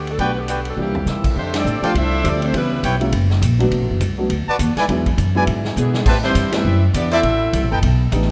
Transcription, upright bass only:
0.00 0.15 D2 medium
0.19 0.74 B1 medium
0.77 1.04 C2 medium
1.06 1.34 C3 medium
1.36 1.64 F2 medium
1.65 1.81 A2 medium
1.82 muted upright bass stroke soft
1.94 2.23 C2 medium
2.24 2.53 D2 medium
2.53 2.82 C#2 medium
2.83 3.12 B1 medium
3.12 3.41 F#1 medium
3.42 3.70 A#1 medium
3.71 3.81 B1 medium
3.81 3.90 A1 medium
3.90 4.00 F#1 medium
4.00 4.29 C2 medium
4.30 4.46 D2 medium
4.47 muted upright bass stroke soft
4.59 4.76 D#2 medium
4.76 muted upright bass stroke soft
4.88 5.17 E2 medium
5.18 5.46 F#2 medium
5.47 5.76 G#2 medium
5.76 6.05 B2 medium
6.06 6.34 A2 medium
6.35 6.64 G2 medium
6.65 6.93 F#2 medium
6.94 7.23 E2 medium
7.23 7.52 A1 medium
7.53 7.63 C2 medium
7.63 7.71 A1 medium
7.72 7.81 F#1 medium
7.82 8.11 B1 medium
8.12 8.31 A1 loud

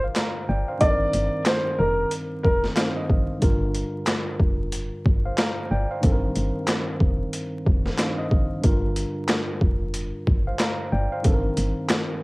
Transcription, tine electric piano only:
0.00 0.76 G2 medium
0.00 0.77 D3 medium
0.00 0.77 F4 medium
0.00 0.78 A#4 medium
0.00 0.16 F5 medium
0.04 0.16 C5 medium
0.17 0.48 F5 medium
0.17 0.47 A#5 medium
0.49 0.68 D5 medium
0.49 0.68 G5 medium
0.68 1.00 C5 medium
0.68 0.99 F5 medium
0.78 2.72 G2 medium
0.78 2.72 D#3 medium
0.78 2.73 C4 medium
0.83 0.90 A4 medium
0.90 2.77 A#4 medium
2.75 3.38 G2 medium
2.75 3.42 D#3 medium
2.75 3.42 C4 medium
2.75 3.42 C5 medium
2.75 2.95 F5 medium
2.97 3.39 D#5 medium
3.39 5.97 G2 medium
3.39 5.98 D3 medium
3.39 5.99 F4 medium
3.44 6.00 A#4 medium
5.26 5.38 C5 medium
5.26 5.37 F5 medium
5.39 5.70 F5 medium
5.39 5.69 A#5 medium
5.71 5.90 D5 medium
5.71 5.89 G5 medium
5.91 6.22 C5 medium
5.91 6.21 F5 medium
6.01 7.94 G2 medium
6.01 7.95 D#3 medium
6.01 7.95 C4 medium
6.06 6.12 A4 medium
6.12 7.99 A#4 medium
7.97 8.60 G2 medium
7.97 8.63 D#3 medium
7.97 8.64 C4 soft
7.97 8.64 C5 medium
7.97 8.17 F5 medium
8.18 8.61 D#5 medium
8.61 11.19 G2 medium
8.61 11.20 D3 medium
8.61 11.21 F4 medium
8.66 11.22 A#4 medium
10.47 10.59 C5 medium
10.47 10.59 F5 medium
10.60 10.91 F5 medium
10.60 10.91 A#5 medium
10.92 11.11 D5 medium
10.92 11.11 G5 medium
11.12 11.43 C5 medium
11.12 11.43 F5 medium
11.23 12.23 G2 medium
11.23 12.23 D#3 medium
11.23 12.23 C4 medium
11.27 11.34 A4 medium
11.34 12.23 A#4 medium

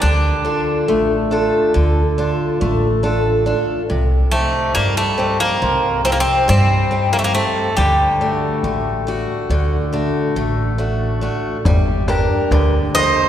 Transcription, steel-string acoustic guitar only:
0.02 0.86 D3 medium
0.45 1.14 D4 soft
0.45 1.14 F4 soft
0.45 1.14 A4 soft
0.88 1.72 A3 medium
1.31 2.00 D4 soft
1.31 2.00 F4 soft
1.31 2.01 A4 soft
1.74 2.58 D3 medium
2.18 2.86 D4 soft
2.18 2.87 F4 soft
2.18 2.87 A4 soft
2.61 3.44 A3 medium
3.03 3.45 D4 soft
3.03 3.46 F4 soft
3.03 3.46 A4 soft
3.46 3.80 D4 soft
3.46 3.81 F4 soft
3.46 3.81 A4 soft
3.90 4.73 C3 medium
4.33 5.01 C4 soft
4.33 5.02 D#4 soft
4.33 5.02 G4 soft
4.75 5.59 G3 medium
5.18 5.87 C4 soft
5.18 5.87 D#4 soft
5.18 5.88 G4 soft
5.62 6.45 C3 medium
6.05 6.74 C4 soft
6.05 6.74 D#4 soft
6.05 6.74 G4 soft
6.48 7.31 G3 medium
6.91 7.33 C4 soft
6.91 7.33 D#4 soft
6.91 7.33 G4 soft
7.34 7.68 C4 soft
7.34 7.69 D#4 soft
7.34 7.69 G4 soft
7.78 8.61 D3 medium
8.21 8.63 A3 soft
8.21 8.89 D4 soft
8.21 8.90 F#4 soft
8.64 9.06 A3 medium
9.07 9.76 A3 soft
9.07 9.76 D4 soft
9.07 9.76 F#4 soft
9.50 10.33 D3 medium
9.93 10.35 A3 soft
9.93 10.62 D4 soft
9.93 10.62 F#4 soft
10.36 10.77 A3 medium
10.78 11.20 A3 soft
10.78 11.21 D4 soft
10.78 11.21 F#4 soft
11.21 11.56 A3 soft
11.21 11.56 D4 soft
11.21 11.57 F#4 soft
11.66 12.08 G3 medium
12.08 12.77 D4 soft
12.08 12.77 G4 soft
12.08 12.78 A#4 medium
12.52 13.29 D3 medium
12.95 13.29 A#3 soft
12.95 13.29 G4 soft
12.95 13.29 A#4 soft

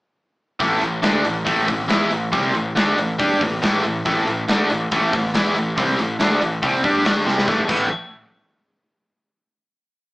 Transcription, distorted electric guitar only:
0.60 0.80 A2 medium
0.60 0.81 E3 loud
0.60 0.81 A3 loud
0.81 0.99 A2 medium
0.81 0.99 E3 medium
1.02 1.23 D3 loud
1.02 1.24 A3 loud
1.02 1.24 D4 loud
1.24 1.42 A2 medium
1.24 1.42 E3 medium
1.45 1.66 A2 medium
1.45 1.66 E3 loud
1.45 1.67 A3 loud
1.67 1.85 A2 medium
1.67 1.85 E3 medium
1.88 2.09 E3 medium
1.88 2.10 B3 loud
1.88 2.11 E4 loud
2.10 2.28 A2 medium
2.10 2.28 E3 medium
2.32 2.53 C3 loud
2.32 2.54 G3 loud
2.32 2.54 C4 loud
2.54 2.72 A2 medium
2.54 2.72 E3 medium
2.75 2.97 D3 medium
2.75 2.97 A3 loud
2.75 2.97 D4 loud
2.97 3.15 A2 medium
2.97 3.15 E3 medium
3.19 3.40 G3 loud
3.19 3.40 D4 medium
3.19 3.41 G4 loud
3.41 3.58 A2 medium
3.41 3.58 E3 medium
3.62 3.83 A2 medium
3.62 3.84 E3 medium
3.62 3.84 A3 medium
3.84 4.01 A2 medium
3.84 4.02 E3 medium
4.05 4.26 A2 medium
4.05 4.27 E3 loud
4.05 4.27 A3 loud
4.27 4.44 A2 medium
4.27 4.45 E3 medium
4.49 4.70 D3 loud
4.49 4.70 A3 loud
4.49 4.70 D4 loud
4.71 4.88 A2 medium
4.71 4.88 E3 medium
4.92 5.12 A2 loud
4.92 5.13 E3 loud
4.92 5.13 A3 loud
5.14 5.31 A2 medium
5.14 5.31 E3 medium
5.35 5.55 E3 medium
5.35 5.56 B3 medium
5.35 5.56 E4 loud
5.57 5.73 A2 medium
5.57 5.73 E3 medium
5.77 5.98 C3 medium
5.77 5.98 G3 loud
5.77 5.98 C4 loud
5.99 6.16 A2 medium
5.99 6.16 E3 medium
6.20 6.41 D3 medium
6.20 6.41 A3 loud
6.20 6.41 D4 loud
6.41 6.58 A2 medium
6.41 6.58 E3 medium
6.62 6.83 C3 medium
6.62 6.83 G3 medium
6.62 6.84 C4 loud
6.84 7.05 G3 medium
6.84 7.05 D4 loud
6.84 7.05 G4 loud
7.05 7.26 D3 medium
7.05 7.26 A3 loud
7.05 7.26 D4 loud
7.26 7.47 C3 medium
7.26 7.47 G3 medium
7.26 7.48 C4 medium
7.47 7.60 A2 medium
7.47 7.60 E3 loud
7.47 7.61 A3 loud
7.68 7.86 A2 medium
7.68 7.86 E3 medium
7.68 7.86 A3 loud

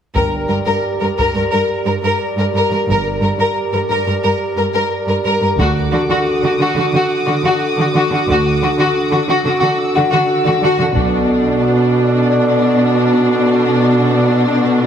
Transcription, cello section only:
0.16 0.22 G2 soft
0.50 0.57 G2 soft
0.67 0.74 G2 soft
1.01 1.08 G2 soft
1.18 1.25 G2 soft
1.35 1.42 G2 soft
1.52 1.58 G2 soft
1.86 1.92 G2 soft
2.03 2.10 G2 soft
2.38 2.44 G2 soft
2.54 2.61 G2 soft
2.71 2.78 G2 soft
2.88 2.95 G2 soft
3.22 3.28 G2 soft
3.39 3.45 G2 soft
3.73 3.80 G2 soft
3.90 3.96 G2 soft
4.06 4.13 G2 soft
4.24 4.31 G2 soft
4.57 4.64 G2 soft
4.74 4.81 G2 soft
5.08 5.15 G2 soft
5.25 5.32 G2 soft
5.42 5.48 G2 soft
5.59 5.66 D3 soft
5.93 5.99 D3 soft
6.09 6.16 D3 soft
6.42 6.49 D3 soft
6.59 6.66 D3 soft
6.75 6.82 D3 soft
6.92 6.99 D3 soft
7.27 7.33 D3 soft
7.44 7.51 D3 soft
7.78 7.85 D3 soft
7.95 8.02 D3 soft
8.11 8.18 D3 soft
8.28 8.35 D3 soft
8.62 8.69 D3 soft
8.78 8.85 D3 soft
9.12 9.18 D3 soft
9.28 9.35 D3 soft
9.46 9.52 D3 soft
9.62 9.69 D3 soft
9.96 10.03 D3 soft
10.12 10.19 D3 medium
10.46 10.53 D3 soft
10.63 10.69 D3 medium
10.79 10.86 D3 soft
10.95 14.87 B2 medium

